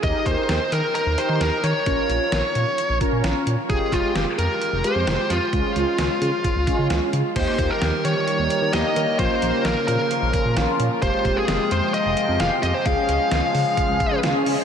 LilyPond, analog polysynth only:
\new Staff \with { instrumentName = "Analog polysynth" } { \time 4/4 \key ees \mixolydian \tempo 4 = 131 <ees' g' bes'>4~ <ees' g' bes'>16 r4 r16 <ees' g' bes'>4 r8 | <des' f' bes'>4~ <des' f' bes'>16 r4 r16 <des' f' bes'>4 r8 | <aes f' g'>4~ <aes f' g'>16 r4 r16 <aes f' g'>4 r8 | <aes des' f'>4~ <aes des' f'>16 r4 r16 <aes des' f'>4 r8 |
<bes ees' g'>4~ <bes ees' g'>16 r4. r16 <bes ees' g'>8 r8 | <bes des' f'>4~ <bes des' f'>16 r4. r16 <bes des' f'>8 r8 | <aes f' g'>4~ <aes f' g'>16 r4. r16 <aes f' g'>8 r8 | <des' f' aes'>4~ <des' f' aes'>16 r4. r16 <des' f' aes'>8 r8 | }